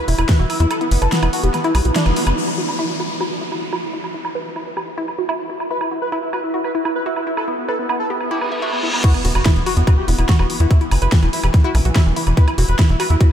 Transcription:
0.08 E1 E4, open hi-hat
0.18 E1 E4, closed hi-hat, high woodblock
0.29 B4, kick, snare, closed hi-hat
0.39 E1 E4 F#4
0.50 E4, open hi-hat, high woodblock
0.60 E2 E4, closed hi-hat
0.71 A4, closed hi-hat, high woodblock
0.81 B3 E4, closed hi-hat
0.91 F#1 B3, open hi-hat
1.02 F#1 A4 B4, closed hi-hat, high woodblock
1.12 B3, snare, closed hi-hat
1.23 E1 B3 E4, closed hi-hat, high woodblock
1.33 F#4, open hi-hat
1.43 E1 B3 G4, closed hi-hat
1.54 B3, snare, closed hi-hat, high woodblock
1.64 E4, closed hi-hat
1.75 B1 B3, open hi-hat, high woodblock
1.85 B1 B3 F#4, closed hi-hat
1.96 D4 E4, snare, closed hi-hat
2.06 F#1 B3, closed hi-hat, high woodblock
2.16 B3 E4, open hi-hat
2.27 F#1 B3, closed hi-hat, high woodblock
2.37 E4, downlifter
2.48 high woodblock
2.58 F#4
2.68 high woodblock
2.79 E4
3.00 F#4, high woodblock
3.21 F#4, high woodblock
3.41 E4
3.52 E4, high woodblock
3.73 F#4, high woodblock
3.93 E4
4.04 high woodblock
4.14 E4
4.25 high woodblock
4.35 B4
4.56 E4, high woodblock
4.77 G4, high woodblock
4.98 E4
5.08 high woodblock
5.18 F#4
5.29 E4, high woodblock
5.50 E4
5.60 high woodblock
5.71 E4 B4
5.81 E4, high woodblock
5.91 E4 F#4
6.02 B4
6.12 E4, high woodblock
6.23 E4
6.33 F#4 B4, high woodblock
6.43 E4
6.54 E4 F#4
6.64 B4, high woodblock
6.75 E4
6.85 E4, high woodblock
6.96 B4
7.06 E4 F#4
7.16 E4, high woodblock
7.27 E4
7.37 A4, high woodblock
7.48 B3 E4
7.58 B3
7.68 A4 B4, high woodblock
7.79 B3
7.89 B3 E4, high woodblock
8.00 A4
8.10 B3 G4
8.21 B3, reverse cymbal, high woodblock
8.31 E4 G4
8.41 B3, high woodblock
8.52 B3 E5
8.62 F#4 E5
8.73 B3, high woodblock
8.83 B3 E4
8.93 B3, high woodblock
9.04 E4 F#4, kick, closed hi-hat, crash, impact
9.14 B3, closed hi-hat, high woodblock
9.25 E1 B3 F#4, open hi-hat
9.35 E1 F#4, closed hi-hat, high woodblock
9.46 B3 E4, kick, snare, closed hi-hat
9.56 E1 B3, closed hi-hat
9.66 F#4, open hi-hat, high woodblock
9.77 E2 B3, closed hi-hat
9.87 B3 F#4, kick, closed hi-hat, high woodblock
9.98 G4
10.08 E1 B3 E4, open hi-hat
10.18 E1 B3 E4, closed hi-hat, high woodblock
10.29 F#4, kick, snare, closed hi-hat
10.39 E1 B3 F#4, high woodblock
10.50 B3, open hi-hat
10.60 E2 B3 E4, closed hi-hat
10.71 E4, kick, closed hi-hat, high woodblock
10.81 E3 E4, closed hi-hat
10.91 F#1 E3, open hi-hat, high woodblock
11.02 F#1 E4 B4, closed hi-hat
11.12 E3, kick, snare, closed hi-hat
11.23 E1 E3 E4, closed hi-hat, high woodblock
11.33 E4, open hi-hat
11.43 E1 E3 G4, closed hi-hat, high woodblock
11.54 E3, kick, snare, closed hi-hat
11.64 E4 F#4
11.75 B1 E3, open hi-hat, zap, high woodblock
11.85 B1 E3 F#4, closed hi-hat
11.96 E4, kick, snare, closed hi-hat, high woodblock
12.06 E1 E3
12.16 E3 E4, open hi-hat
12.27 E1 E3, closed hi-hat, high woodblock
12.37 E4 B4, kick, closed hi-hat
12.48 E4, closed hi-hat, high woodblock
12.58 E1 E4 F#4, open hi-hat
12.68 E1 B4, closed hi-hat
12.79 E4, kick, snare, closed hi-hat, high woodblock
12.89 E1 E4, closed hi-hat
13.00 F#4 B4, open hi-hat, high woodblock
13.10 E2 E4, closed hi-hat
13.21 E4 F#4, kick, closed hi-hat

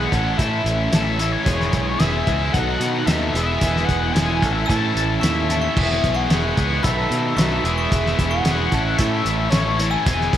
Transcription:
Already playing: E3 G#3 B3 E4 G#4 F#5
0.12 A1 A2 E3 A3 C#4 E4 A4, kick, closed hi-hat
0.38 A2 E3 A3 C#4 E5, kick, closed hi-hat
0.42 E4 A4
0.64 A1, closed hi-hat
0.91 A1 A2 E3 A3 C#4 E4 A4 E5, snare, closed hi-hat
1.19 A2 E3 A3 C#4 E4 A4, closed hi-hat
1.32 C#5
1.46 E1 E3 G#3 B3 E4 G#4, kick, closed hi-hat
1.61 snare
1.73 B1, kick, closed hi-hat
1.84 C#5
1.98 E1 E3 G#3 B3 E4 G#4 E5, snare, closed hi-hat
2.27 C#2 E3 G#3 B3 E4 G#4, kick, closed hi-hat
2.53 B1 B2 D#3 F#3 B3 D#4 A4 F#5, kick, closed hi-hat
2.80 B2, closed hi-hat
3.06 D#2 B2 D#3 F#3 B3 D#4 A4 E5, snare, closed hi-hat
3.34 E1 E3 G#3 B3 E4 G#4, closed hi-hat
3.43 D#5 E5
3.61 E1 E3 G#3 B3 E4 G#4, kick, closed hi-hat
3.76 snare
3.85 F#5
3.89 E1, kick, closed hi-hat
4.13 E1 E3 G#3 G#5, snare, closed hi-hat
4.17 B3 E4 G#4
4.42 A1 A2 E3 A3 C#4 E4 A4, kick, closed hi-hat
4.52 E5
4.66 A2 A5 E6, kick
4.70 E3 A3 C#4 E4 A4, closed hi-hat
4.95 A1, closed hi-hat
5.20 D#2 A2 E3 A3 E5 C#6, closed hi-hat
5.24 C#4 E4 A4, snare
5.49 A2 E3 A3 C#4 E4 A4, closed hi-hat
5.61 E5 C#6
5.76 E1 E3 G#3 B3 E4 G#4, kick, crash
5.91 snare
6.04 B1, kick, closed hi-hat
6.15 F#5 C#6
6.30 E1 E3 G#3 B3 E4 G#4, snare, closed hi-hat
6.57 C#2 E3 G#3 B3 E4 G#4, kick, closed hi-hat
6.83 B1 B2 D#3 F#3 B3 D#4 A4 E5 B5, kick, closed hi-hat
7.11 B2, closed hi-hat
7.37 B1 B2 D#3 F#3 B3 D#4 A4 E5 C#6, snare, closed hi-hat
7.64 E1 E3 G#3 B3 E4 G#4, closed hi-hat
7.77 E5 C#6
7.92 E1 E3 G#3 B3 E4 G#4, kick, closed hi-hat
8.06 snare
8.19 E1, kick, closed hi-hat
8.30 F#5 C#6
8.44 E1 E3 G#3 B3 E4 G#4, snare, closed hi-hat
8.72 A1 A2 E3 A3 C#4 E4 A4, kick, closed hi-hat
8.97 A2 E3 A3 C#4 E4 E5 C#6, kick, closed hi-hat
9.02 A4
9.25 A1, closed hi-hat
9.50 A1 A2 E3 C#5 A5, snare, closed hi-hat
9.54 A3 C#4 E4 A4
9.79 A2 E3 A3 C#4 E4 A4, closed hi-hat
9.90 G#5 E6
10.05 E1 E3 G#3 B3 E4 G#4, kick, closed hi-hat
10.21 snare
10.33 B1, kick, closed hi-hat

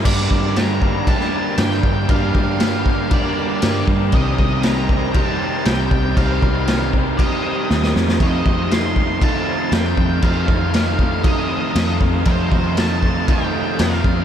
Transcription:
0.04 G2 D3 G3 A#3 D4 G4 A#4 D5 F5 G5, kick, crash
0.31 G2, kick
0.56 A#5, snare, crash
0.81 G2 D3 G3 A#3 D4, kick
1.06 G2 D3 G3 A#3 D4 G4 A5, kick, crash
1.20 snare
1.58 G2 D3 G3 A#3 D4 G5, snare, crash
1.72 snare
1.83 G2, kick
2.07 G2 D3 G3 A#3 D4 G4 F5, kick, crash
2.12 D4
2.35 G2, kick
2.60 snare, crash
2.84 G2 D3 G3 A#3 D4, kick
3.11 G2 D3 G3 A#3 D4 G4 D5, kick, crash
3.61 G2 D3 G3 A#3, snare, crash
3.65 D4
3.87 G2, kick
4.11 C2 C3 D#3 G3 C4 D#4 C5 D#5, kick, crash
4.16 C4 G4
4.39 C2, kick
4.63 A#5, snare, crash
4.88 C3 G3 C4 D#4, kick
5.13 C3 D#3 G3 C4 A#5, kick, crash
5.18 G4
5.24 A5
5.65 C2 C3 G3 C4 D#4 G5, snare, crash
5.91 C2, kick
6.16 C2 C3 D#3 G3 C4 D#4 G4 F5, kick, crash
6.42 C2, kick
6.67 snare, crash
6.92 C3 G3 C4 D#4, kick
7.18 C3 D#3 G3 C4 D#5, kick, crash
7.22 G4
7.68 D#2 C3 G3 C4 D#4, snare
7.83 snare
7.96 F2, snare
8.09 snare
8.19 F2 C3 D#3 A3 D#4 F4 A4 D#5 F5, kick, crash
8.45 F2, kick
8.71 C6, snare, crash
8.96 F2 C3 D#3 A3 D#4, kick
9.21 F2 C3 D#3 A3 D#4 F4 A5, kick, crash
9.71 F2 C3 D#3 A3 D#4 G5, snare, crash
9.97 F2, kick
10.21 F2 C3 D#3 A3 D#4 F4 F5, kick, crash
10.48 F2, kick
10.74 snare, crash
10.97 F2 C3 D#3 A3 D#4, kick
11.23 F2 C3 D#3 A3 D#4 F4 D#5, kick, crash
11.73 F2 C3 D#3 A3 D#4, snare, crash
12.01 F2, kick
12.25 F2 C3 D#3 A3 D#4 F4 C5 D#5, kick, crash
12.52 F2, kick
12.77 A5, snare, crash
13.02 F2 C3 D#3 A3 D#4, kick
13.27 F2 C3 D#3 A3 D#4 F4 G5, kick, crash
13.78 F2 C3 D#3 A3 D#4 F5, snare, crash
13.92 snare
14.04 F2, kick

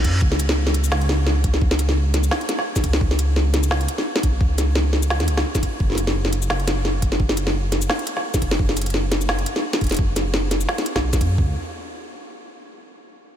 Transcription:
Already playing: reverse cymbal
0.04 F#2, kick, closed hi-hat
0.22 C#2, kick
0.32 snare
0.39 closed hi-hat, shaker
0.49 snare
0.67 snare
0.74 closed hi-hat
0.84 shaker
0.92 C#2, snare
1.01 closed hi-hat
1.09 snare
1.27 snare
1.44 kick, closed hi-hat
1.54 snare
1.61 C#2, kick
1.71 snare
1.79 closed hi-hat, shaker
1.89 snare
2.14 snare, closed hi-hat
2.23 shaker
2.31 snare
2.41 closed hi-hat
2.49 snare, closed hi-hat
2.59 snare
2.76 kick, snare, shaker
2.84 C#2, kick, closed hi-hat
2.93 snare
3.01 C#2, kick
3.11 snare
3.19 closed hi-hat, shaker
3.36 snare
3.54 snare, closed hi-hat
3.63 shaker
3.71 C#2, snare
3.81 closed hi-hat
3.88 closed hi-hat
3.98 snare
4.16 snare
4.23 B1, kick, closed hi-hat
4.41 C#2, kick
4.58 snare, closed hi-hat, shaker
4.75 snare
4.93 snare
5.03 shaker
5.10 snare
5.20 E2, snare, closed hi-hat
5.28 C#2, closed hi-hat
5.37 snare
5.55 kick, snare, shaker
5.63 kick, closed hi-hat
5.80 F#1, kick
5.90 snare
5.92 snare
5.95 snare, closed hi-hat, shaker
6.07 snare
6.25 snare
6.33 closed hi-hat
6.42 shaker
6.50 F#1, snare
6.60 closed hi-hat
6.68 snare, closed hi-hat
6.85 snare
7.02 kick, closed hi-hat
7.12 snare
7.20 F#1, kick
7.29 snare
7.37 closed hi-hat, shaker
7.47 snare
7.72 snare, closed hi-hat
7.82 shaker
7.90 snare
7.99 closed hi-hat
8.07 closed hi-hat
8.17 snare
8.34 kick, snare, shaker
8.42 F#1, kick, closed hi-hat
8.51 snare
8.59 F#1, kick
8.69 snare
8.77 closed hi-hat, shaker
8.81 closed hi-hat
8.86 closed hi-hat
8.90 snare, closed hi-hat
9.12 snare, closed hi-hat
9.21 shaker
9.29 F#1, snare
9.39 closed hi-hat
9.46 closed hi-hat
9.56 snare
9.73 snare
9.81 E1, kick, closed hi-hat
9.84 closed hi-hat
9.87 closed hi-hat
9.89 snare, closed hi-hat
9.92 closed hi-hat
9.94 closed hi-hat
9.97 F#1, kick, closed hi-hat
10.16 snare, closed hi-hat, shaker
10.34 snare
10.51 snare, closed hi-hat
10.61 shaker
10.69 snare
10.78 snare, closed hi-hat
10.86 closed hi-hat
10.96 B1, kick, snare
11.13 kick, snare, shaker
11.21 F#2, kick, closed hi-hat
11.38 C#2, kick, floor tom

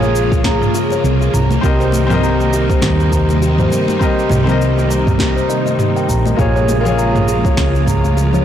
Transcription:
Already playing: A#1 C#3 F3 G#3 A#3 F4 G#4 C#5
0.02 C#5, high conga, cabasa
0.16 cabasa
0.32 G#4, kick, cabasa
0.44 A#5, kick, snare, high conga, cabasa
0.62 mid tom, cabasa
0.75 G#4, cabasa
0.90 C#5, high conga, cabasa
1.04 C2, cabasa
1.21 G#4, cabasa
1.34 C2 C3 D#3 G3 D#4 A#5, mid tom, cabasa
1.51 high conga, cabasa
1.61 C2 C4 G4 A#4 D#5, kick, cabasa
1.80 C5, cabasa
1.92 high conga, cabasa
2.07 C4 G4, mid tom, low conga
2.11 A#4 D#5, cabasa
2.24 A#5, cabasa
2.40 high conga, cabasa
2.53 G4, cabasa
2.70 C5, kick, cabasa
2.82 D#2, kick, snare, mid tom, high conga, cabasa
3.00 G4, cabasa
3.12 A#5, kick, cabasa
3.29 high conga, cabasa
3.42 G4, cabasa
3.58 C5, mid tom, low conga, cabasa
3.70 low conga, cabasa
3.88 G4, high conga, cabasa
3.99 C4 G4 A#4 D#5 A#5, kick, cabasa
4.19 cabasa
4.30 C2 G4, mid tom, high conga, cabasa
4.44 C4 G4 C5, low conga
4.49 A#4 D#5, cabasa
4.62 cabasa
4.77 G4, high conga, cabasa
4.90 A#5, cabasa
5.07 kick, mid tom, cabasa
5.19 G4, kick, snare, high conga, cabasa
5.36 C5, cabasa
5.50 D#5, cabasa
5.66 D#5, high conga, cabasa
5.79 G4, mid tom, cabasa
5.96 G5, cabasa
6.09 A#1 A#5, kick, cabasa
6.25 D#5, high conga, cabasa
6.36 A#1 C#3 F3 G#3 A#3 F4 G#4 C#5, kick, mid tom, cabasa
6.56 C#5, cabasa
6.69 high conga, cabasa
6.81 A#3 F4
6.85 G#4 C#5, low conga, cabasa
6.99 A#5, cabasa
7.15 mid tom, high conga, cabasa
7.28 G#4, cabasa
7.45 C#5, kick, cabasa
7.57 C#2, kick, snare, high conga, cabasa
7.75 G#4, cabasa
7.87 A#5, kick, mid tom, cabasa
8.04 high conga, cabasa
8.17 G#4, cabasa
8.33 C#5, low conga, cabasa

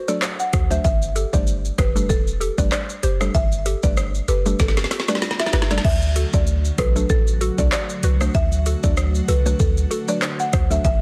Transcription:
0.08 F#3 A3 D4 F#4 A4 D5, shaker
0.22 cross-stick, clap, shaker
0.40 F#5, shaker
0.53 D2 F#4 A4, kick, cross-stick, closed hi-hat, shaker
0.70 F#3 A3 D4 F#4 C5 E5, shaker
0.84 G1 E5, kick, shaker
1.02 shaker
1.15 G4 A4, closed hi-hat, shaker
1.33 G1 G3 A3 D4 G4 C5 D5, kick, shaker
1.47 shaker
1.65 shaker
1.78 F#1 G4 B4, kick, cross-stick, closed hi-hat, shaker
1.95 G3 A3 D4 G4 A4, shaker
2.09 E1 A4, kick, shaker
2.27 shaker
2.40 G4 A4, closed hi-hat, shaker
2.58 F#1 G3 A3 D4 G4 B4 D5, kick, shaker
2.72 D5, cross-stick, clap, shaker
2.89 shaker
3.03 F#1 G4 C5, closed hi-hat, shaker
3.21 G3 A3 D4 G4 A4, cross-stick, shaker
3.35 G1 E5, kick, shaker
3.52 shaker
3.66 G4 A4, closed hi-hat, shaker
3.83 G1 G3 A3 D4 G4 B4 D5, kick, shaker
3.97 cross-stick, shaker
4.15 shaker
4.28 F#1 G4 A4 B4, closed hi-hat, shaker
4.46 G3 A3 D4 G4 A4, shaker
4.59 G1 A4, kick, snare, shaker
4.68 snare
4.77 snare, shaker
4.84 snare
4.91 G4 A4, snare, closed hi-hat, shaker
5.00 snare
5.08 G3 A3 D4 G4 B4 D5, snare, shaker
5.15 snare
5.22 snare, shaker
5.31 snare
5.39 E5, snare, shaker
5.46 snare
5.53 G1 G4 B4, snare, closed hi-hat, shaker
5.62 snare
5.71 G3 A3 D4 G4 A4 D5, snare, shaker
5.78 snare
5.84 D2 D3 F#3 A3 F#4 E5, kick, crash
6.02 shaker
6.16 F#4 A4, closed hi-hat, shaker
6.33 D2 F#3 A3 D4 F#4 A4 D5, kick, shaker
6.47 shaker
6.65 shaker
6.78 B1 F#4 A4 B4, kick, cross-stick, closed hi-hat, shaker
6.96 F#3 A3 D4 F#4 A4, shaker
7.10 A1 A4, kick, shaker
7.27 shaker
7.41 F#4 A4, closed hi-hat, shaker
7.58 C2 F#3 A3 D4 F#4 A4 D5, kick, shaker
7.72 D5, cross-stick, clap, shaker
7.89 shaker
8.03 C2 F#4 B4, closed hi-hat, shaker
8.21 F#3 A3 D4 F#4 C5, cross-stick, shaker
8.35 D2 E5, kick, shaker
8.52 shaker
8.66 F#4 A4, closed hi-hat, shaker
8.83 D2 F#3 A3 D4 F#4 A4 D5, kick, shaker
8.97 cross-stick, shaker
9.15 shaker
9.28 C2 F#4 A4 B4, closed hi-hat, shaker
9.46 F#3 A3 D4 F#4 B4, shaker
9.60 D2 A4, kick, shaker
9.77 shaker
9.91 F#4 A4, closed hi-hat, shaker
10.08 F#3 A3 D4 F#4 B4 D5, shaker
10.22 cross-stick, clap, shaker
10.39 F#5, shaker
10.53 D2 F#4 C5, kick, cross-stick, closed hi-hat, shaker
10.70 F#3 A3 D4 F#4 A4 E5, shaker
10.84 G1 G3 G4 E5, kick, shaker

